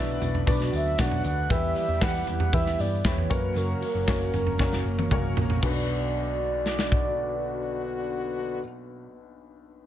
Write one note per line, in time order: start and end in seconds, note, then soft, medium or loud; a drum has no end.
0.00 0.17 B1 loud
0.00 0.18 B2 medium
0.00 0.45 E3 medium
0.00 0.21 F#3 medium
0.00 0.22 B3 medium
0.00 0.46 B3 medium
0.00 0.21 D4 medium
0.00 0.47 D4 medium
0.00 0.45 E4 loud
0.00 0.19 F#4 medium
0.00 0.47 F#4 medium
0.00 0.47 B4 medium
0.00 0.47 D5 medium
0.00 0.48 E5 loud
0.20 0.43 B1 medium
0.20 0.47 B3 medium
0.20 0.47 D4 medium
0.20 0.47 F#4 medium
0.20 floor tom medium
0.20 hi-hat pedal medium
0.20 open hi-hat medium
0.35 floor tom medium
0.46 0.68 B1 loud
0.46 0.73 B2 medium
0.46 0.73 F#3 loud
0.46 0.86 B3 medium
0.46 0.74 B3 loud
0.46 0.86 D4 medium
0.46 0.73 D4 loud
0.46 0.86 F#4 medium
0.46 0.71 F#4 loud
0.46 0.86 B4 medium
0.46 0.86 D5 medium
0.46 0.60 D5 loud
0.46 kick loud
0.46 hi-hat pedal medium
0.46 open hi-hat loud
0.61 snare soft
0.72 0.94 D2 loud
0.72 1.24 F#3 medium
0.72 0.98 B3 medium
0.72 0.99 D4 medium
0.72 0.99 F#4 medium
0.72 1.24 F#4 medium
0.72 0.98 E5 loud
0.72 hi-hat pedal medium
0.72 open hi-hat medium
0.98 1.20 B1 loud
0.98 1.24 F#3 medium
0.98 1.37 B3 medium
0.98 1.25 B3 medium
0.98 1.38 D4 medium
0.98 1.24 D4 medium
0.98 1.38 F#4 medium
0.98 1.22 F#4 medium
0.98 1.38 B4 medium
0.98 1.38 D5 medium
0.98 1.24 F#5 loud
0.98 kick loud
0.98 snare loud
0.98 hi-hat pedal medium
0.98 open hi-hat medium
1.11 floor tom medium
1.23 1.46 D2 loud
1.23 1.49 B3 soft
1.23 1.50 D4 medium
1.23 1.50 F#4 medium
1.23 1.49 F#5 loud
1.23 hi-hat pedal medium
1.23 open hi-hat medium
1.49 1.72 E2 loud
1.49 1.76 E3 loud
1.49 2.24 E3 medium
1.49 3.02 G3 medium
1.49 1.89 B3 medium
1.49 1.76 B3 loud
1.49 1.89 E4 medium
1.49 1.75 E4 loud
1.49 1.89 G4 medium
1.49 3.02 G4 loud
1.49 1.73 G4 loud
1.49 1.89 B4 medium
1.49 1.89 E5 medium
1.49 1.75 E5 medium
1.49 kick loud
1.49 hi-hat pedal medium
1.49 open hi-hat loud
1.75 2.00 B3 medium
1.75 2.01 E4 medium
1.75 2.01 G4 medium
1.75 2.01 E5 loud
1.75 hi-hat pedal medium
1.75 open hi-hat medium
1.88 1.99 E2 loud
2.00 2.23 E2 loud
2.00 2.27 E3 medium
2.00 2.40 B3 medium
2.00 2.28 B3 medium
2.00 2.40 E4 medium
2.00 2.27 E4 medium
2.00 2.40 G4 medium
2.00 2.25 G4 medium
2.00 2.40 B4 medium
2.00 2.41 E5 medium
2.00 2.26 F#5 loud
2.00 kick loud
2.00 snare loud
2.00 hi-hat pedal medium
2.00 open hi-hat loud
2.26 2.49 E2 loud
2.26 2.52 B3 medium
2.26 2.52 E4 medium
2.26 2.53 G4 medium
2.26 2.55 F#5 loud
2.26 floor tom medium
2.26 hi-hat pedal medium
2.26 open hi-hat medium
2.40 floor tom medium
2.52 2.74 E2 loud
2.52 2.79 E3 medium
2.52 2.92 B3 medium
2.52 2.79 B3 medium
2.52 2.92 E4 medium
2.52 2.78 E4 loud
2.52 2.92 G4 medium
2.52 2.76 G4 loud
2.52 2.92 B4 medium
2.52 2.82 E5 loud
2.52 2.92 E5 medium
2.52 kick loud
2.52 hi-hat pedal medium
2.52 open hi-hat loud
2.66 snare soft
2.78 3.00 G2 loud
2.78 3.03 B3 medium
2.78 3.04 E4 medium
2.78 3.04 G4 medium
2.78 3.07 D5 loud
2.78 hi-hat pedal medium
2.78 open hi-hat medium
3.03 3.26 E2 loud
3.03 3.30 E3 medium
3.03 3.31 B3 medium
3.03 3.31 E4 medium
3.03 3.30 E4 medium
3.03 3.31 G4 medium
3.03 3.28 G4 medium
3.03 3.31 B4 medium
3.03 3.33 C#5 medium
3.03 3.31 E5 medium
3.03 kick loud
3.03 snare loud
3.03 hi-hat pedal medium
3.03 open hi-hat medium
3.18 floor tom medium
3.29 3.73 F#2 loud
3.29 4.82 F#3 medium
3.29 3.54 F#3 medium
3.29 3.92 A#3 medium
3.29 3.55 A#3 medium
3.29 3.55 C#4 medium
3.29 3.92 C#4 medium
3.29 3.56 F#4 medium
3.29 3.92 F#4 medium
3.29 4.82 F#4 medium
3.29 3.93 A#4 medium
3.29 3.59 B4 medium
3.29 3.92 C#5 medium
3.29 kick loud
3.29 hi-hat pedal medium
3.29 open hi-hat medium
3.54 3.81 F#2 medium
3.54 3.82 C#3 medium
3.54 3.82 F#3 medium
3.54 3.82 A#3 loud
3.54 3.81 C#4 loud
3.54 3.79 F#4 loud
3.54 4.34 A#4 loud
3.54 hi-hat pedal medium
3.54 open hi-hat medium
3.81 4.05 F#3 medium
3.81 4.06 A#3 medium
3.81 4.07 C#4 medium
3.81 4.07 F#4 medium
3.81 hi-hat pedal medium
3.81 open hi-hat medium
3.95 4.06 F#1 medium
4.06 4.33 F#3 medium
4.06 4.33 A#3 medium
4.06 4.47 A#3 medium
4.06 4.47 C#4 medium
4.06 4.32 C#4 medium
4.06 4.47 F#4 medium
4.06 4.30 F#4 medium
4.06 4.47 A#4 medium
4.06 4.47 C#5 medium
4.06 kick loud
4.06 snare loud
4.06 hi-hat pedal medium
4.06 open hi-hat loud
4.31 4.55 F#1 medium
4.31 4.58 F#3 medium
4.31 4.58 A#3 medium
4.31 4.58 C#4 medium
4.31 4.59 F#4 medium
4.31 5.33 A#4 loud
4.31 floor tom medium
4.31 hi-hat pedal medium
4.31 open hi-hat medium
4.47 floor tom medium
4.58 4.80 F#1 loud
4.58 4.84 F#2 medium
4.58 4.85 C#3 loud
4.58 4.85 F#3 loud
4.58 4.84 A#3 medium
4.58 4.98 A#3 medium
4.58 4.83 C#4 medium
4.58 4.98 C#4 medium
4.58 4.98 F#4 medium
4.58 4.82 F#4 loud
4.58 4.99 A#4 medium
4.58 4.99 C#5 medium
4.58 kick loud
4.58 snare medium
4.73 snare medium
4.83 5.07 F#1 medium
4.83 5.08 F#3 medium
4.83 5.10 A#3 medium
4.83 5.10 C#4 medium
4.83 5.10 F#4 medium
4.99 high tom medium
5.09 5.32 F#1 loud
5.09 5.36 F#3 medium
5.09 5.37 F#3 medium
5.09 5.36 A#3 medium
5.09 5.50 A#3 medium
5.09 5.50 C#4 medium
5.09 5.35 C#4 medium
5.09 5.37 F#4 medium
5.09 5.50 F#4 medium
5.09 5.34 F#4 medium
5.09 5.50 A#4 medium
5.09 5.50 C#5 loud
5.09 kick loud
5.09 mid tom medium
5.35 5.58 A#1 loud
5.35 5.61 F#3 soft
5.35 5.63 A#3 medium
5.35 5.63 C#4 medium
5.35 5.62 F#4 medium
5.35 floor tom loud
5.50 floor tom loud
5.56 9.06 B2 medium
5.61 8.59 B1 loud
5.61 8.60 B1 medium
5.61 8.59 D3 loud
5.61 9.12 F#3 medium
5.61 8.58 B3 medium
5.61 8.59 B3 medium
5.61 8.59 D4 medium
5.61 8.59 F#4 loud
5.61 8.60 F#4 medium
5.61 8.60 D5 loud
5.61 kick loud
5.61 crash medium
5.65 9.17 B3 medium
5.65 8.62 B4 medium
5.71 9.21 D4 medium
5.75 9.25 F#4 medium
6.66 snare medium
6.79 snare medium
6.92 kick medium